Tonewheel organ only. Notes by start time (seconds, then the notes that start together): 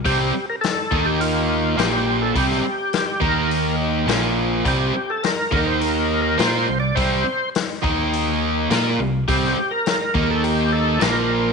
0.06 G4
0.50 A#4
0.61 A4
1.06 G4
1.21 F4
1.79 G4
2.22 A4
2.37 G4
3.23 A#4
4.68 G4
5.10 A4
5.23 A#4
5.66 C5
5.80 A#4
6.22 A#4
6.38 C5
6.80 D5
6.95 C5
9.28 G4
9.71 A#4
10.31 A4
10.43 G4
10.72 A4
11.02 A#4